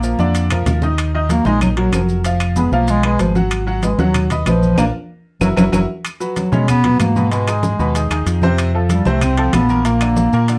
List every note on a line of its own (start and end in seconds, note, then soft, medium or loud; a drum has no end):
0.00 0.13 A#1 medium
0.00 0.16 F3 medium
0.00 0.63 A#3 medium
0.00 0.17 F4 medium
0.00 maracas medium
0.04 0.17 A#4 medium
0.18 0.63 F2 medium
0.18 0.45 D3 medium
0.18 0.45 D4 medium
0.18 0.45 D5 medium
0.18 high conga medium
0.18 maracas soft
0.35 high timbale medium
0.35 maracas medium
0.50 0.77 F3 medium
0.50 0.77 F4 medium
0.50 0.78 A#4 medium
0.50 low conga medium
0.50 high timbale loud
0.50 claves medium
0.50 maracas medium
0.66 1.40 D#2 medium
0.66 low conga loud
0.66 high timbale medium
0.66 low timbale medium
0.66 maracas medium
0.82 1.09 D#3 medium
0.82 1.09 D#4 medium
0.82 1.09 D#5 medium
0.82 low conga medium
0.82 maracas soft
0.98 high conga soft
0.98 high timbale loud
0.98 claves medium
0.98 maracas medium
1.14 1.27 D#3 medium
1.14 1.28 D#4 medium
1.14 1.28 D#5 medium
1.14 high conga soft
1.29 1.43 F#3 medium
1.29 1.47 A#3 medium
1.29 1.43 F#4 medium
1.29 1.44 A#4 medium
1.29 high conga loud
1.29 high timbale medium
1.29 maracas medium
1.45 1.89 A#1 loud
1.45 1.72 D#3 medium
1.45 1.61 G#3 loud
1.45 1.72 D#4 loud
1.45 1.72 D#5 medium
1.45 high conga loud
1.45 maracas soft
1.61 1.69 F#3 medium
1.61 high conga soft
1.61 low conga medium
1.61 high timbale medium
1.61 claves medium
1.61 maracas medium
1.77 1.90 F#3 medium
1.77 1.92 F#3 medium
1.77 1.90 F#4 medium
1.77 1.90 A#4 medium
1.77 high conga soft
1.77 high timbale medium
1.92 2.66 F1 loud
1.92 2.01 F3 medium
1.92 2.19 F#3 medium
1.92 2.19 F#4 medium
1.92 2.19 A#4 medium
1.92 high conga medium
1.92 high timbale medium
1.92 claves medium
1.92 maracas medium
2.09 maracas soft
2.24 2.51 F3 medium
2.24 2.51 F4 medium
2.24 2.51 F5 medium
2.24 high conga soft
2.24 high timbale medium
2.24 maracas medium
2.40 high conga soft
2.40 high timbale medium
2.40 claves medium
2.40 maracas medium
2.56 2.70 G#3 medium
2.56 2.71 B3 medium
2.56 2.70 G#4 medium
2.56 2.70 B4 medium
2.56 high conga loud
2.56 maracas medium
2.72 3.16 B1 loud
2.72 2.98 F3 medium
2.72 2.91 A#3 medium
2.72 2.99 F4 medium
2.72 2.99 F5 medium
2.72 high conga soft
2.72 maracas soft
2.88 3.04 G#3 loud
2.88 high timbale medium
2.88 maracas medium
3.03 3.30 G#3 medium
3.03 3.22 G#3 loud
3.03 3.30 G#4 medium
3.03 3.30 B4 medium
3.03 high conga soft
3.03 high timbale loud
3.03 claves medium
3.19 3.93 G#1 medium
3.19 3.36 F3 medium
3.19 high conga soft
3.19 high timbale medium
3.19 low timbale medium
3.19 maracas medium
3.35 3.61 F#3 medium
3.35 3.61 F#4 medium
3.35 3.62 F#5 medium
3.35 high conga medium
3.35 maracas soft
3.51 high conga soft
3.51 high timbale loud
3.51 claves medium
3.51 maracas medium
3.67 3.80 F#3 medium
3.67 3.80 F#4 medium
3.67 3.80 F#5 medium
3.67 high conga soft
3.83 3.98 G#3 medium
3.83 3.96 B3 medium
3.83 3.96 B4 medium
3.83 3.96 D#5 medium
3.83 high conga loud
3.83 high timbale medium
3.83 maracas medium
3.98 4.43 D#2 medium
3.98 4.25 F#3 medium
3.98 4.29 F#3 medium
3.98 4.25 F#4 medium
3.98 4.25 F#5 medium
3.98 high conga loud
3.98 maracas soft
4.14 high conga soft
4.14 low conga medium
4.14 high timbale loud
4.14 claves medium
4.14 maracas medium
4.30 4.44 B3 medium
4.30 4.44 B4 medium
4.30 4.44 D#5 medium
4.30 high conga soft
4.30 low conga medium
4.30 high timbale medium
4.30 maracas medium
4.46 4.76 A#1 medium
4.46 4.76 F3 medium
4.46 4.72 B3 medium
4.46 4.73 B4 medium
4.46 4.73 D#5 medium
4.46 high conga medium
4.46 high timbale medium
4.46 low timbale medium
4.46 claves medium
4.46 maracas medium
4.62 high conga medium
4.62 maracas soft
4.78 4.90 A#1 loud
4.78 4.86 A#3 medium
4.78 4.88 D4 medium
4.78 4.88 F4 loud
4.78 4.88 A#4 loud
4.78 high conga medium
4.78 high timbale loud
4.78 claves loud
4.78 maracas medium
5.41 5.53 F#1 loud
5.41 5.49 F#3 medium
5.41 5.51 E4 loud
5.41 5.51 F#4 medium
5.41 5.51 A#4 medium
5.41 high conga medium
5.41 high timbale loud
5.41 claves loud
5.41 maracas medium
5.56 5.69 F#1 medium
5.56 5.65 F#3 loud
5.56 5.67 E4 loud
5.56 5.67 F#4 medium
5.56 5.67 A#4 medium
5.56 high conga loud
5.56 high timbale loud
5.56 claves loud
5.56 maracas medium
5.72 5.84 F#1 medium
5.72 5.81 F#3 medium
5.72 5.83 E4 medium
5.72 5.83 F#4 loud
5.72 5.83 A#4 loud
5.72 high conga medium
5.72 high timbale loud
5.72 claves medium
5.72 maracas loud
6.05 high conga soft
6.05 high timbale loud
6.05 claves medium
6.05 maracas medium
6.20 6.46 F#3 medium
6.20 6.47 F#4 medium
6.20 6.47 B4 medium
6.20 high conga soft
6.20 maracas medium
6.36 6.54 F#3 medium
6.36 high conga medium
6.36 high timbale medium
6.36 maracas medium
6.52 6.96 B2 medium
6.52 6.78 C#3 medium
6.52 6.68 G#3 medium
6.52 6.78 C#4 medium
6.52 6.78 C#5 medium
6.52 high conga loud
6.52 maracas soft
6.68 6.98 B3 loud
6.68 high conga soft
6.68 low conga medium
6.68 high timbale medium
6.68 claves medium
6.68 maracas medium
6.84 7.10 F#3 medium
6.84 7.10 F#4 medium
6.84 7.10 B4 medium
6.84 high conga soft
6.84 low conga medium
6.84 high timbale medium
6.99 7.73 G#2 medium
6.99 7.29 A#3 medium
6.99 high conga medium
6.99 high timbale medium
6.99 low timbale medium
6.99 claves medium
6.99 maracas medium
7.16 7.29 B2 medium
7.16 7.29 B3 medium
7.16 7.29 B4 medium
7.16 high conga medium
7.16 maracas soft
7.31 7.45 B2 medium
7.31 8.22 G#3 medium
7.31 7.45 B3 medium
7.31 7.45 B4 medium
7.31 high conga soft
7.31 high timbale medium
7.31 maracas medium
7.47 7.74 D#3 medium
7.47 7.74 D#4 medium
7.47 7.74 G#4 medium
7.47 high conga soft
7.47 high timbale medium
7.47 claves medium
7.47 maracas medium
7.63 high conga loud
7.63 maracas medium
7.79 8.09 D#2 medium
7.79 7.92 B2 medium
7.79 7.92 B3 medium
7.79 7.93 B4 medium
7.79 high conga soft
7.79 maracas soft
7.95 8.08 D#3 medium
7.95 8.08 D#4 medium
7.95 8.09 G#4 medium
7.95 high conga soft
7.95 high timbale medium
7.95 maracas medium
8.10 8.25 D#2 medium
8.10 8.37 D#3 medium
8.10 8.37 D#4 medium
8.10 8.37 G#4 medium
8.10 high conga soft
8.10 high timbale loud
8.10 claves medium
8.10 maracas medium
8.26 9.00 F2 loud
8.26 high conga soft
8.26 high timbale medium
8.26 maracas medium
8.42 8.69 C3 medium
8.42 8.69 C4 medium
8.42 8.69 C5 loud
8.42 high conga medium
8.42 maracas soft
8.58 high conga soft
8.58 high timbale loud
8.58 claves medium
8.58 maracas medium
8.74 9.00 F3 medium
8.74 9.01 F4 medium
8.74 9.01 A4 medium
8.74 high conga soft
8.89 9.09 G3 medium
8.89 high conga loud
8.89 high timbale medium
8.89 maracas medium
9.05 9.50 C2 loud
9.05 9.32 C3 medium
9.05 9.25 A3 loud
9.05 9.32 C4 medium
9.05 9.32 C5 medium
9.05 high conga loud
9.05 maracas soft
9.21 9.54 C4 loud
9.21 high conga soft
9.21 low conga medium
9.21 high timbale medium
9.21 claves medium
9.21 maracas medium
9.37 9.64 F3 medium
9.37 9.64 F4 medium
9.37 9.64 A4 medium
9.37 high conga soft
9.37 high timbale medium
9.53 10.27 A#1 loud
9.53 9.87 B3 loud
9.53 high conga medium
9.53 high timbale loud
9.53 low timbale medium
9.53 claves medium
9.53 maracas medium
9.69 9.82 A#2 medium
9.69 9.82 A#3 medium
9.69 9.83 A#4 medium
9.69 high conga medium
9.69 maracas soft
9.85 9.98 A#2 medium
9.85 10.59 A#3 medium
9.85 9.99 A#3 medium
9.85 9.99 A#4 medium
9.85 high conga soft
9.85 high timbale medium
9.85 maracas medium
10.00 10.27 D3 medium
10.00 10.28 D4 medium
10.00 10.28 F4 medium
10.00 high conga soft
10.00 high timbale medium
10.00 claves medium
10.00 maracas medium
10.17 high conga loud
10.17 maracas medium
10.33 10.59 A#2 medium
10.33 10.46 A#2 medium
10.33 10.46 A#3 medium
10.33 10.46 A#4 medium
10.33 high conga soft
10.33 maracas soft
10.48 10.59 D3 medium
10.48 10.59 D4 medium
10.48 10.59 F4 medium
10.48 high conga soft
10.48 high timbale medium
10.48 maracas medium